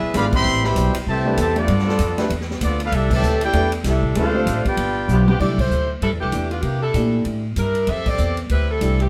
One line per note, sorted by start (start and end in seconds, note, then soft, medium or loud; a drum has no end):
0.00 0.11 G#3 medium
0.00 0.11 B3 medium
0.00 0.12 D4 medium
0.00 0.11 E4 medium
0.00 0.12 G#4 medium
0.00 0.13 B4 medium
0.00 0.12 E5 loud
0.00 muted upright bass stroke soft
0.14 0.44 G#1 medium
0.14 0.23 D3 medium
0.14 0.45 F3 loud
0.14 0.23 G#3 medium
0.14 0.31 G#3 medium
0.14 0.23 B3 medium
0.14 0.31 B3 medium
0.14 0.45 D4 medium
0.14 0.31 D4 medium
0.14 0.45 E4 medium
0.14 0.32 F4 medium
0.14 0.25 G#4 medium
0.14 0.45 B4 loud
0.14 0.25 D5 medium
0.14 0.25 F5 medium
0.14 0.25 B5 loud
0.14 kick soft
0.14 hi-hat pedal medium
0.14 ride medium
0.33 0.62 E3 medium
0.33 0.62 G3 medium
0.33 0.62 C4 medium
0.33 0.63 G4 loud
0.33 0.63 E5 loud
0.33 0.63 B5 loud
0.33 0.63 C6 loud
0.33 kick loud
0.33 crash medium
0.44 0.75 A1 medium
0.64 0.95 B2 loud
0.64 0.95 E3 loud
0.64 0.95 G3 medium
0.64 0.96 G4 loud
0.64 0.96 C5 loud
0.64 0.96 E5 medium
0.64 0.96 B5 loud
0.64 snare medium
0.75 0.93 B1 medium
0.75 kick soft
0.75 hi-hat pedal medium
0.75 ride medium
0.94 ride medium
1.07 1.37 C2 medium
1.07 1.36 C3 medium
1.07 1.36 E3 medium
1.07 1.36 A3 medium
1.07 1.37 G4 medium
1.07 1.37 C5 medium
1.07 1.37 E5 medium
1.07 1.37 A5 loud
1.07 kick soft
1.25 1.36 A3 medium
1.25 1.37 D4 medium
1.25 1.37 G4 medium
1.25 1.37 B4 medium
1.37 1.67 E2 loud
1.37 1.56 C3 medium
1.37 1.56 E3 medium
1.37 1.68 G3 loud
1.37 1.56 A3 medium
1.37 1.68 B3 medium
1.37 1.68 C4 medium
1.37 1.57 G4 medium
1.37 1.68 A4 loud
1.37 1.56 A5 loud
1.37 kick soft
1.37 hi-hat pedal medium
1.37 ride medium
1.41 1.57 C5 medium
1.41 1.57 E5 medium
1.56 2.15 F3 medium
1.56 1.67 A3 medium
1.56 2.15 B3 medium
1.56 1.67 D4 medium
1.56 2.15 D4 medium
1.56 2.15 F4 medium
1.56 1.67 G4 medium
1.56 1.68 A4 medium
1.56 2.15 A4 medium
1.56 2.15 D5 loud
1.56 ride medium
1.68 1.98 G2 loud
1.68 kick soft
1.68 ride medium
1.79 snare soft
1.86 2.27 F3 loud
1.86 2.27 B3 loud
1.86 2.27 F4 loud
1.86 2.28 A4 loud
1.86 snare medium
1.99 2.29 F2 medium
1.99 kick soft
1.99 hi-hat pedal medium
1.99 ride medium
2.18 2.29 A3 medium
2.18 2.29 D4 medium
2.18 2.29 G4 medium
2.18 2.29 B4 medium
2.18 snare medium
2.18 ride medium
2.30 2.60 E2 medium
2.30 kick soft
2.30 ride medium
2.41 snare soft
2.51 snare medium
2.61 2.91 D2 loud
2.61 2.80 F3 medium
2.61 2.79 B3 medium
2.61 2.80 B3 medium
2.61 2.79 D4 medium
2.61 2.80 F4 medium
2.61 2.80 A4 medium
2.61 2.80 D5 loud
2.61 kick soft
2.61 hi-hat pedal medium
2.61 ride medium
2.80 2.92 B3 medium
2.80 2.92 D4 medium
2.80 2.92 F4 medium
2.80 2.93 A4 medium
2.80 2.93 B4 medium
2.80 ride medium
2.84 2.93 D4 medium
2.84 2.94 F5 loud
2.92 3.21 C2 loud
2.92 3.12 G3 medium
2.92 3.10 A3 medium
2.92 3.12 D4 medium
2.92 3.11 E4 medium
2.92 3.12 G4 medium
2.92 3.12 A4 medium
2.92 3.12 E5 loud
2.92 kick soft
2.92 ride medium
3.11 3.40 A2 loud
3.11 3.40 E3 loud
3.11 3.52 E3 medium
3.11 3.40 A3 loud
3.11 3.52 C4 medium
3.11 3.52 D4 medium
3.11 3.41 G4 loud
3.11 3.52 A4 loud
3.11 3.41 D5 loud
3.11 3.41 E5 medium
3.11 3.41 A5 loud
3.11 kick medium
3.11 crash medium
3.22 3.52 D2 loud
3.22 hi-hat pedal medium
3.41 3.71 A3 medium
3.41 3.71 E4 medium
3.41 3.72 E4 loud
3.41 3.71 G4 medium
3.41 3.72 A4 loud
3.41 3.72 D5 medium
3.41 3.72 G5 loud
3.41 ride medium
3.53 3.83 E2 medium
3.53 3.71 A3 medium
3.53 3.71 D4 medium
3.53 3.71 G4 medium
3.53 3.72 B4 medium
3.53 kick soft
3.53 ride medium
3.72 ride medium
3.84 4.14 C2 medium
3.84 4.14 G3 medium
3.84 4.14 A3 medium
3.84 4.15 D4 medium
3.84 4.13 E4 medium
3.84 4.15 G4 medium
3.84 4.15 A4 medium
3.84 4.15 E5 medium
3.84 kick soft
3.84 snare soft
3.84 hi-hat pedal medium
3.84 ride medium
4.03 kick medium
4.15 4.45 D2 medium
4.15 4.62 F3 medium
4.15 4.33 G#3 medium
4.15 4.62 A3 medium
4.15 4.62 C4 medium
4.15 4.33 C#4 medium
4.15 4.62 D4 medium
4.15 4.63 D4 medium
4.15 4.62 F4 medium
4.15 4.33 F#4 medium
4.15 4.62 A4 loud
4.15 4.63 A4 medium
4.15 4.33 B4 medium
4.15 4.63 C5 medium
4.15 4.63 F5 loud
4.15 kick soft
4.15 ride medium
4.34 4.62 A3 medium
4.34 4.62 D4 medium
4.34 4.62 G4 medium
4.34 4.62 C5 medium
4.46 4.64 A1 loud
4.46 kick soft
4.46 hi-hat pedal medium
4.46 ride medium
4.65 5.23 B3 medium
4.65 5.23 D4 medium
4.65 5.25 F4 medium
4.65 5.23 G4 medium
4.65 5.25 B4 medium
4.65 5.24 D5 medium
4.65 5.25 G5 loud
4.65 muted upright bass stroke soft
4.65 kick medium
4.65 ride medium
4.77 5.07 G1 medium
4.77 kick soft
4.77 ride medium
5.08 5.38 B1 medium
5.08 5.22 F3 medium
5.08 5.27 F3 medium
5.08 5.22 B3 medium
5.08 5.28 B3 medium
5.08 5.28 D4 medium
5.08 5.22 E4 medium
5.08 5.28 G4 medium
5.08 5.22 B4 loud
5.08 hi-hat pedal medium
5.28 5.40 F3 medium
5.28 5.40 B3 medium
5.28 5.40 D4 medium
5.28 5.40 G4 loud
5.28 high tom medium
5.39 5.69 C2 medium
5.39 5.56 E3 medium
5.39 5.57 A3 soft
5.39 5.58 A3 medium
5.39 5.57 D4 medium
5.39 5.58 E4 medium
5.39 5.57 G4 medium
5.39 5.58 G4 medium
5.39 5.58 D5 medium
5.39 kick medium
5.39 crash medium
5.58 5.91 A3 medium
5.58 5.90 E4 medium
5.58 5.90 G4 medium
5.58 5.91 C5 loud
5.58 kick medium
5.58 crash medium
5.70 6.00 D2 medium
5.70 hi-hat pedal medium
6.01 6.12 G2 medium
6.01 6.12 G3 medium
6.01 6.11 D4 medium
6.01 6.11 E4 medium
6.01 6.11 A4 medium
6.01 kick soft
6.01 ride medium
6.12 6.21 E2 medium
6.20 6.32 C2 medium
6.20 6.49 E3 medium
6.20 6.49 A3 medium
6.20 6.49 D4 medium
6.20 6.50 G4 medium
6.32 6.62 E2 medium
6.32 6.49 E3 soft
6.32 6.50 A3 soft
6.32 6.50 D4 soft
6.32 6.50 G4 medium
6.32 kick soft
6.32 hi-hat pedal medium
6.32 ride medium
6.51 6.63 G3 medium
6.51 6.63 B3 medium
6.51 6.61 D4 medium
6.51 6.63 F4 medium
6.51 ride soft
6.62 6.93 C3 medium
6.62 6.82 E3 medium
6.62 6.82 A#3 medium
6.62 6.81 D4 medium
6.62 6.82 G4 medium
6.62 kick soft
6.62 ride medium
6.82 7.23 G3 medium
6.82 7.23 D4 medium
6.82 7.23 E4 medium
6.82 7.23 A4 medium
6.94 7.24 A#2 medium
6.94 7.40 E3 medium
6.94 7.41 A3 soft
6.94 7.41 D4 soft
6.94 7.41 G4 medium
6.94 kick soft
6.94 hi-hat pedal soft
6.94 ride medium
7.25 7.55 A2 medium
7.25 kick soft
7.25 ride medium
7.56 7.87 G2 medium
7.56 7.87 G3 medium
7.56 7.87 D4 medium
7.56 7.87 E4 medium
7.56 7.87 A#4 medium
7.56 kick soft
7.56 hi-hat pedal medium
7.56 ride medium
7.75 ride soft
7.87 8.18 F2 medium
7.87 8.07 C4 medium
7.87 8.07 G4 medium
7.87 8.07 A4 medium
7.87 8.08 E5 loud
7.87 kick soft
7.87 ride medium
8.06 8.38 C4 medium
8.06 8.38 G4 medium
8.06 8.39 A4 medium
8.06 8.38 D5 loud
8.06 kick medium
8.06 crash medium
8.18 8.49 E2 medium
8.18 hi-hat pedal medium
8.37 ride soft
8.49 8.80 D2 medium
8.49 8.68 G3 medium
8.49 8.69 C4 medium
8.49 8.68 E4 medium
8.49 8.68 B4 medium
8.49 kick soft
8.49 ride medium
8.70 9.00 G3 medium
8.70 9.00 C4 medium
8.70 9.01 E4 medium
8.70 9.00 A4 medium
8.81 9.09 C2 medium
8.81 8.98 E3 medium
8.81 8.98 A3 soft
8.81 8.99 D4 medium
8.81 8.99 G4 medium
8.81 kick soft
8.81 hi-hat pedal medium
8.81 ride medium
9.00 9.09 E3 medium
9.00 9.09 A3 medium
9.00 9.09 C4 medium
9.00 9.09 G4 medium
9.00 ride soft